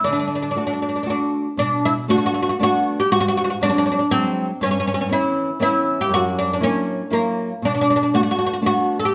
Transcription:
0.04 D3 D4
0.13 D4
0.20 D4
0.28 D4
0.35 D4
0.42 D4
0.51 D4
0.55 A3 D4 F#4
0.67 D4
0.73 D4
0.82 D4
0.89 D4
0.96 D4
1.03 A3 D4 F#4
1.10 D4
1.57 B2 D4
1.85 E4
2.08 A3 B3 D4 F#4
2.18 F#4
2.26 F#4
2.34 F#4
2.42 F#4
2.49 F#4
2.59 A3 B3 D4 F#4
3.00 G4
3.11 G#2 F#4
3.21 F#4
3.28 F#4
3.37 F#4
3.44 F#4
3.50 F#4
3.61 F#3 G#3 C4 D4
3.70 D4
3.78 D4
3.86 D4
3.92 D4
3.99 D4
4.11 F#3 G#3 C4
4.61 G2 C#4
4.71 C#4
4.80 C#4
4.87 C#4
4.94 C#4
5.01 C#4
5.09 E3 B3 C#4 E4
5.60 E3 B3 C#4 E4
6.01 G4
6.09 F#2
6.14 F#4
6.39 D4
6.53 D4
6.60 F#3 A#3 C#4 E4
7.10 F#3 A#3 E4
7.62 B2 D4
7.75 D4
7.81 D4
7.90 D4
7.96 D4
8.03 D4
8.14 A3 B3 D4 F#4
8.23 F#4
8.31 F#4
8.39 F#4
8.46 F#4
8.53 F#4
8.61 A3 B3 D4
8.66 F#4
8.99 A4
9.05 G4

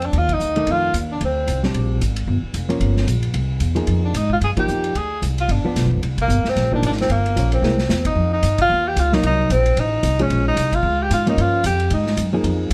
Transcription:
Already playing: F2
0.02 D4, ride
0.13 D#2, kick, ride
0.18 F4
0.29 kick, ride
0.34 D#4
0.40 D2, hi-hat pedal
0.56 D#3 A3 D4, ride
0.67 F2, kick, ride
0.72 F4
0.93 D#2, kick, hi-hat pedal, ride
1.12 D4
1.21 D2, kick, ride
1.25 C4
1.47 C2, kick, hi-hat pedal, ride
1.63 G3 C4 D4, snare
1.74 A#1, kick, ride
2.01 G#1, kick, hi-hat pedal, ride
2.16 ride
2.27 G1, kick
2.42 muted upright bass stroke
2.54 F1, kick, hi-hat pedal, ride
2.69 F3 A#3 C#4, ride
2.80 G1, kick, ride
2.97 snare
3.07 A#1, kick, hi-hat pedal, ride
3.23 ride
3.34 C2, kick, ride
3.60 E2, kick, hi-hat pedal, ride
3.75 F3 A#3 D#4 G#4, ride
3.87 F2, kick, ride
4.05 D4
4.14 G#2 D#4, kick, hi-hat pedal, ride
4.30 F4, kick
4.41 G2 G#4, kick, ride
4.56 F3 A#3 D#4 G4, muted upright bass stroke, kick, ride
4.68 F2, hi-hat pedal
4.84 ride
4.95 D2 G#4, kick, ride
5.22 C2, kick, hi-hat pedal, ride
5.38 F4, ride
5.48 G1 D4, kick, ride
5.64 F3 B3 D4, muted upright bass stroke
5.76 B1, kick, snare, hi-hat pedal, ride
5.84 G1
5.91 F1, kick
6.02 C2, kick, ride
6.18 A#3, kick, ride
6.28 G1, hi-hat pedal
6.44 muted upright bass stroke, snare
6.49 C4
6.56 A#1, kick, snare, ride
6.72 F3 A#3 D4 D#4, kick
6.82 G#1 D4, kick, hi-hat pedal, ride
6.92 snare
6.98 C4, snare, ride
7.09 G1 A#3, kick, ride
7.26 ride
7.36 A#1 F3 A#3 C#4, kick, hi-hat pedal, ride
7.52 C4, ride
7.62 C2 G#3 A#3 E4, snare
7.78 snare
7.89 E2, snare, hi-hat pedal
8.05 D#4, kick, ride
8.15 F2
8.33 D#4
8.43 G2, kick, hi-hat pedal, ride
8.58 F4, kick, ride
8.69 D#2
8.88 G4
8.96 C#2 F4, kick, hi-hat pedal, ride
9.12 F#3 A#3 D#4, snare
9.23 C2 D#4, kick, ride
9.50 A#1 C4, kick, hi-hat pedal, ride
9.66 ride
9.76 A1 D#4, kick, ride
10.03 C2, kick, hi-hat pedal, ride
10.19 F3 G#3 C#4, ride
10.30 A#1, kick, ride
10.48 D#4
10.56 C2, kick, hi-hat pedal, ride
10.73 F4, kick, ride
10.83 C#2
11.02 G4
11.10 G#2 F4, kick, hi-hat pedal, ride
11.27 F3 A#3 C#4 D#4, ride
11.37 G2 F4, kick, ride
11.64 F2 G4, kick, hi-hat pedal, ride
11.80 ride
11.90 G#2 D#4, kick, ride
12.07 snare
12.17 F#2, kick, hi-hat pedal, ride
12.33 F3 A#3 D#4 G#4
12.44 F2, kick, ride

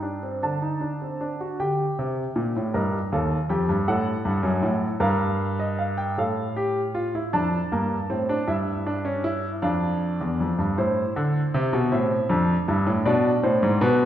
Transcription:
Already playing: G2 G5
0.03 D4
0.23 C4
0.43 D3 D4 A5
0.62 D#4
0.81 D4
1.02 C4
1.21 D4
1.41 F#4
1.60 D3 G4 G5
1.99 C3
2.36 A#2
2.56 A2
2.74 G2 A#4 D#5
3.12 D#2 A4 F5
3.49 F2 G4 G5
3.69 G2
3.88 A2 A4 F#5
4.25 G2
4.43 F#2
4.62 A2
5.00 G2 A#4 F5
5.59 D#5
5.79 F5
5.98 G5
6.17 A2 A4 F5
6.57 G4
6.95 F4
7.15 E4
7.33 F2 D4 A5
7.72 G2 A#3
8.10 A2 C4
8.29 D4
8.48 G2 E4 E5
8.86 D4
9.05 C#4
9.24 E4
9.62 F2 D4 F5
10.21 E2
10.40 F2
10.59 G2
10.78 A2 E4 C5
11.16 D3
11.54 C3
11.73 B2
11.92 A2 C4 E5
12.29 F2 D4
12.68 G2 E4
12.87 A2
13.05 B2 D4 D5
13.43 A2 C5
13.63 G#2
13.81 B2 B4

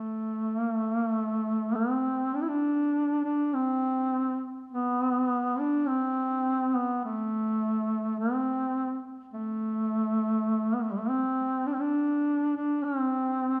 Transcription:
Already playing: A3
0.57 A#3
0.74 A3
0.93 A#3
1.10 A3
1.75 C4
2.34 D4
2.42 E4
2.48 D4
3.25 D4
3.54 C4
4.72 B3
5.59 D4
5.88 C4
6.75 B3
7.05 A3
8.20 C4
9.34 A3
10.74 B3
10.82 A3
10.91 G3
10.99 A3
11.09 C4
11.67 D4
11.74 C4
11.81 D4
12.57 D4
12.84 C4

